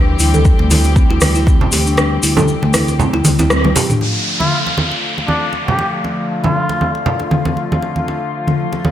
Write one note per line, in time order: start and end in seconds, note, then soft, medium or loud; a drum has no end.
0.00 0.15 D2 loud
0.00 3.97 E3 medium
0.00 3.97 G3 medium
0.00 3.97 C4 medium
0.00 3.97 G4 medium
0.19 0.53 D2 loud
0.19 0.27 E4 medium
0.19 open hi-hat medium
0.19 cabasa medium
0.34 0.45 A4 medium
0.34 mid tom medium
0.34 muted conga soft
0.34 high conga medium
0.34 cabasa soft
0.45 kick loud
0.45 cabasa soft
0.59 1.04 D2 loud
0.59 0.65 A3 medium
0.59 muted conga medium
0.70 0.78 E4 loud
0.70 open hi-hat medium
0.70 high conga medium
0.70 cabasa medium
0.84 muted conga soft
0.84 cabasa soft
0.96 1.09 C4 medium
0.96 kick loud
0.96 cabasa soft
1.10 1.18 D2 loud
1.10 1.20 E4 loud
1.10 muted conga medium
1.21 1.67 D2 medium
1.21 cross-stick medium
1.21 open hi-hat medium
1.21 high conga medium
1.21 cabasa medium
1.35 1.46 E4 loud
1.35 cabasa soft
1.47 1.60 C4 medium
1.47 kick loud
1.47 muted conga soft
1.47 cabasa soft
1.61 low conga medium
1.72 2.18 D2 loud
1.72 1.85 G4 medium
1.72 open hi-hat medium
1.72 muted conga medium
1.72 cabasa medium
1.86 1.96 D4 medium
1.86 cabasa medium
1.97 2.10 D4 medium
1.97 cross-stick medium
1.97 muted conga medium
1.97 cabasa soft
2.23 2.56 D2 loud
2.23 2.31 E4 medium
2.23 open hi-hat medium
2.23 cabasa medium
2.37 2.48 A4 medium
2.37 mid tom medium
2.37 muted conga soft
2.37 high conga medium
2.37 low conga medium
2.37 cabasa soft
2.48 cabasa soft
2.62 3.07 D2 loud
2.62 2.69 A3 medium
2.62 muted conga medium
2.74 2.82 E4 loud
2.74 cross-stick medium
2.74 open hi-hat medium
2.74 high conga medium
2.74 cabasa medium
2.88 muted conga soft
2.88 cabasa soft
2.99 3.12 C4 medium
2.99 low conga medium
2.99 cabasa soft
3.13 3.22 D2 loud
3.13 3.24 E4 loud
3.13 muted conga medium
3.24 3.64 D2 medium
3.24 open hi-hat medium
3.24 mid tom medium
3.24 high conga medium
3.24 cabasa loud
3.39 3.49 E4 loud
3.39 high conga loud
3.39 cabasa soft
3.50 3.63 C4 medium
3.50 cross-stick medium
3.50 high tom medium
3.50 muted conga soft
3.50 cabasa soft
3.64 3.73 D2 medium
3.64 high tom medium
3.64 high conga medium
3.76 3.88 G4 medium
3.76 open hi-hat medium
3.76 muted conga medium
3.76 low conga medium
3.76 cabasa medium
3.90 4.00 D4 medium
3.90 mid tom medium
3.90 high conga medium
3.90 cabasa medium
4.01 8.91 D3 medium
4.01 8.91 F3 medium
4.01 8.91 A3 medium
4.01 8.91 F4 medium
4.01 crash medium
4.01 downlifter medium
4.01 muted conga soft
4.40 4.60 F4 medium
4.40 mid tom medium
4.40 muted conga soft
4.40 high conga medium
4.67 muted conga soft
4.78 high conga medium
4.91 muted conga soft
5.18 muted conga soft
5.28 5.49 D4 medium
5.28 high conga medium
5.53 muted conga soft
5.67 5.87 G4 medium
5.67 low conga medium
5.79 muted conga medium
6.04 muted conga soft
6.44 6.95 F4 medium
6.44 mid tom medium
6.44 muted conga soft
6.44 high conga medium
6.44 low conga medium
6.69 muted conga soft
6.81 high conga medium
6.95 muted conga soft
7.06 low conga loud
7.20 muted conga soft
7.31 mid tom medium
7.31 high conga medium
7.45 high conga medium
7.57 muted conga soft
7.72 high conga loud
7.82 muted conga soft
7.96 high conga medium
8.08 muted conga soft
8.47 mid tom medium
8.47 muted conga soft
8.47 high conga medium
8.73 muted conga soft
8.85 high conga medium